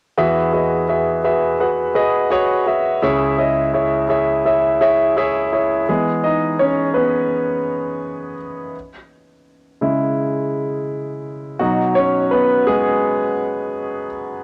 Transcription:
0.17 2.99 E2 medium
0.17 2.99 E3 medium
0.17 0.47 F#4 medium
0.17 0.47 G#4 medium
0.17 0.47 B4 medium
0.17 0.47 E5 medium
0.53 0.82 F#4 medium
0.53 0.82 G#4 medium
0.53 0.83 B4 medium
0.53 0.83 D#5 medium
0.89 1.18 F#4 medium
0.89 1.18 G#4 medium
0.89 1.18 B4 medium
0.89 1.18 E5 medium
1.24 1.54 F#4 medium
1.24 1.54 G#4 medium
1.24 1.54 B4 medium
1.24 1.54 E5 medium
1.60 1.89 F#4 medium
1.60 1.90 G#4 medium
1.60 1.90 B4 medium
1.60 1.90 F#5 medium
1.95 2.25 F#4 medium
1.95 2.25 G#4 medium
1.95 2.25 B4 medium
1.95 2.25 D#5 medium
2.30 2.60 F#4 medium
2.30 2.61 G#4 medium
2.30 2.61 B4 medium
2.30 2.61 C#5 loud
2.66 2.96 F#4 medium
2.66 2.96 G#4 medium
2.66 2.97 B4 medium
2.66 2.97 E5 medium
3.02 5.85 C#2 medium
3.02 5.85 C#3 medium
3.02 3.32 E4 medium
3.02 3.32 G#4 medium
3.02 3.33 C#5 medium
3.02 3.33 E5 medium
3.38 3.68 E4 medium
3.38 3.68 G#4 medium
3.38 3.68 C#5 soft
3.38 3.68 D#5 medium
3.74 4.03 E4 medium
3.74 4.04 G#4 medium
3.74 4.04 C#5 medium
3.74 4.04 E5 medium
4.09 4.39 E4 medium
4.09 4.39 G#4 medium
4.09 4.39 C#5 medium
4.09 4.40 E5 medium
4.45 4.75 E4 medium
4.45 4.75 G#4 medium
4.45 4.75 C#5 medium
4.45 4.75 E5 medium
4.81 5.10 E4 medium
4.81 5.11 G#4 medium
4.81 5.11 C#5 medium
4.81 5.11 E5 medium
5.17 5.46 E4 medium
5.17 5.47 G#4 medium
5.17 5.47 C#5 medium
5.17 5.47 E5 medium
5.52 5.82 E4 medium
5.52 5.82 G#4 medium
5.52 5.82 C#5 medium
5.52 5.83 E5 medium
5.89 8.70 E3 soft
5.89 6.23 G#3 medium
5.89 6.95 B3 soft
5.89 6.25 G#4 medium
6.24 6.58 D#4 medium
6.24 6.61 D#5 medium
6.59 6.69 C#4 medium
6.59 6.67 C#5 medium
6.94 8.35 B3 medium
6.94 8.34 B4 medium
9.81 11.56 C#3 soft
9.81 11.56 G#3 soft
9.81 11.56 E4 medium
11.59 14.42 B2 soft
11.59 11.94 F#3 medium
11.59 14.42 D#4 medium
11.59 11.97 F#4 medium
11.95 12.30 C#4 medium
11.95 12.32 C#5 medium
12.31 12.65 B3 medium
12.31 12.68 B4 medium
12.67 14.07 G#3 medium
12.67 14.06 G#4 medium

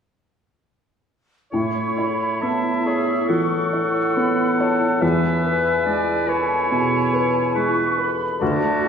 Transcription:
1.52 5.05 A2 soft
1.52 3.26 A2 soft
1.52 2.82 E4 medium
1.52 2.43 C#5 soft
1.52 1.94 C#6 soft
1.75 2.18 C#5 soft
1.96 2.62 E4 soft
1.96 2.69 C#5 soft
1.96 2.42 B5 soft
2.19 3.49 C#5 soft
2.41 4.14 B3 soft
2.41 3.12 B3 soft
2.41 3.28 E5 soft
2.41 2.86 A5 soft
2.63 3.07 E4 soft
2.85 3.22 D4 soft
2.85 3.30 G#4 medium
2.85 3.56 C#5 soft
2.85 4.16 C#6 soft
3.08 3.71 E4 soft
3.28 5.00 E3 soft
3.28 3.99 E3 soft
3.28 5.01 A4 medium
3.28 5.03 F#5 soft
3.51 3.93 C#5 soft
3.72 4.36 E4 soft
3.72 4.42 C#5 soft
3.94 5.05 C#5 soft
4.15 8.05 B3 soft
4.15 4.85 B3 soft
4.15 4.60 B5 soft
4.37 4.80 E4 soft
4.59 4.96 D4 soft
4.59 5.02 C#5 soft
4.59 5.02 A5 soft
4.81 5.84 E4 soft
5.01 6.68 E2 soft
5.01 8.44 E3 soft
5.01 6.29 B4 medium
5.01 5.85 E5 soft
5.01 5.44 G#5 soft
5.22 5.63 G#4 soft
5.43 6.05 B4 soft
5.43 6.12 B4 soft
5.43 7.53 G#5 soft
5.64 6.90 G#4 soft
5.85 6.54 G#3 soft
5.85 7.53 E4 soft
5.85 6.30 D5 medium
6.06 6.48 B4 soft
6.28 7.98 E4 medium
6.28 6.65 A4 soft
6.28 6.97 B4 soft
6.28 7.54 C#5 soft
6.49 7.11 B4 soft
6.71 7.39 B2 soft
6.91 7.32 G#4 soft
7.13 7.74 B4 soft
7.13 7.81 B4 soft
7.33 8.44 G#4 soft
7.54 8.24 G#3 soft
7.54 8.82 E4 soft
7.54 8.12 B4 soft
7.54 7.98 C#6 medium
7.76 8.17 B4 soft
7.97 8.34 A4 soft
7.97 8.41 B4 soft
7.97 8.42 B5 medium
8.19 8.44 B4 soft
8.40 8.88 D2 medium
8.40 8.88 D3 soft
8.40 8.88 F#4 medium
8.40 8.88 D5 soft
8.40 8.88 A5 soft
8.62 8.88 F#4 soft
8.83 8.88 E4 soft

